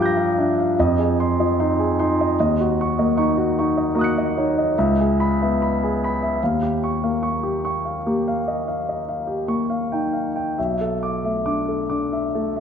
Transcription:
Already playing: G2 F3 D4 G4 F5 A#5
0.00 D6 G6
0.05 A#6
0.17 F5
0.38 D4 E5
0.59 F5
0.79 F2 D#5
0.99 G#4
1.20 C6
1.39 F3 D#5
1.60 D#4 C6
1.79 G#4
1.99 D#4 C6
2.21 D#5
2.40 D#2 D#5
2.60 F#4
2.81 C#6
2.99 A#3 D#5
3.17 D#4 C#6
3.38 F#4
3.59 D#4 C#6
3.77 D#5
3.95 A#3 F#4 A#5
3.99 D#6 F#6
4.04 C#7
4.18 D#5
4.37 D#4 C#5
4.58 D#5
4.78 C#2 E5
5.00 G#4
5.20 B5
5.42 B3 E5
5.62 B5
5.83 G#4
6.04 B5
6.23 E5
6.43 D#2 F5
6.63 G4
6.84 C#6
7.04 A#3 F5
7.23 C#6
7.43 G4
7.65 C#6
7.85 F5
8.06 A#3 G4
8.28 F5
8.48 D#5
8.68 F5
8.89 D#5
9.09 F5
9.27 G4
9.48 A#3 C#6
9.70 F5
9.92 D#4 G5
10.13 F5
10.36 G5
10.58 B1 E5
10.81 A4
11.03 D6
11.24 A3 E5
11.45 D4 D6
11.69 A4
11.90 D4 D6
12.13 E5
12.35 A3 A4
12.56 E5

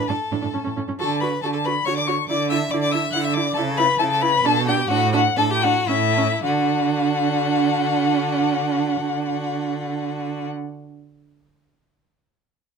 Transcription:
0.08 A2 D4 A4 A5
0.32 A2 D4
0.42 A2 D4
0.53 A2 C#4
0.64 A2 C#4
0.77 A2 C#4
0.88 A2 C#4
0.99 D3 F#4 A4 A5
1.20 F#4 B4 B5
1.42 D3 F#4 A4 A5
1.53 A4 A5
1.64 F#4 B4 B5
1.85 D3 F#4 C#5 C#6
1.97 D5 D6
2.07 F#4 C#5 C#6
2.28 D3 E4 D5 D6
2.50 E4 E5 E6
2.70 D3 E4 D5 D6
2.82 D5 D6
2.92 E4 E5 E6
3.12 D3 E4 F#5 F#6
3.23 E5 E6
3.34 E4 D5 D6
3.54 C#3 E4 A4 A5
3.77 E4 B4 B5
3.99 C#3 E4 A4 A5
4.10 A4 A5
4.21 E4 B4 B5
4.44 B2 D4 A4 A5
4.67 D4 G4 G5
4.88 A2 D4 F#4 F#5
5.13 D4 F#4 F#5
5.36 A2 D4 A4 A5
5.50 G4 G5
5.61 D4 F#4 F#5
5.88 A2 C#4 E4 E5
6.17 C#4
6.44 D3 D4 F#4 F#5

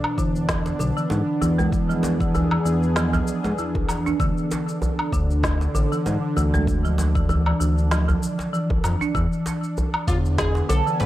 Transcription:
Already playing: B3 D4
0.04 low woodblock
0.18 E2 D3, kick, cabasa
0.36 cabasa
0.49 kick, snare, djembe tone, cabasa
0.66 djembe slap, cabasa
0.79 B1 D3, djembe tone, cabasa
0.97 E3, cabasa
1.10 G#2, djembe slap, cabasa
1.41 E2 E3, djembe tone, cabasa
1.48 G#4
1.58 G#3, djembe bass, cabasa
1.72 kick, cabasa
1.89 F3, cabasa
2.03 djembe slap, djembe tone, cabasa
2.20 E3, kick, cabasa
2.34 E3, djembe bass, cabasa
2.51 E3, low woodblock
2.65 E2 E3, cabasa
2.83 cabasa
2.96 F3, snare, cabasa
3.13 F3, djembe tone, djembe bass, cabasa
3.28 cabasa
3.44 G#2, djembe slap, cabasa
3.58 E2 E3, cabasa
3.75 kick, djembe tone, djembe bass
3.89 djembe slap, cabasa, low woodblock
4.06 D4, djembe tone, cabasa
4.19 D2 D3 E3, kick, cabasa
4.38 cabasa
4.51 djembe slap, cabasa
4.69 cabasa
4.82 djembe bass, cabasa
4.99 low woodblock
5.12 D2 D3, kick, cabasa
5.31 cabasa
5.43 kick, snare, djembe tone, cabasa
5.61 djembe slap, cabasa
5.75 A1 D3, djembe tone, cabasa
5.92 E3, cabasa
6.06 G#2, djembe slap, cabasa
6.36 D2 E3, djembe tone, cabasa
6.54 G#3, djembe bass, cabasa
6.67 kick, cabasa
6.85 F3, cabasa
6.98 djembe slap, djembe tone, cabasa
7.15 E3, kick, cabasa
7.29 E3, djembe bass, cabasa
7.46 E3, low woodblock
7.60 D2 E3, cabasa
7.78 cabasa
7.91 F3, snare, cabasa
8.08 F3, djembe tone, djembe bass, cabasa
8.23 cabasa
8.39 djembe slap, cabasa
8.53 E3, cabasa
8.70 kick, djembe tone, djembe bass
8.84 F2, djembe slap, cabasa, low woodblock
9.01 D4, djembe tone, cabasa
9.15 E2 E3, kick, cabasa
9.33 cabasa
9.46 djembe slap, cabasa
9.64 cabasa
9.77 djembe bass, cabasa
9.94 low woodblock
10.07 E2 D3 F4, kick, cabasa
10.12 B3
10.25 cabasa
10.38 G#4, kick, snare, djembe tone, cabasa
10.55 djembe slap, cabasa
10.67 B1 D3 A4 G#5, djembe tone, cabasa
10.86 E3, cabasa
11.00 G#2 B4, djembe slap, cabasa

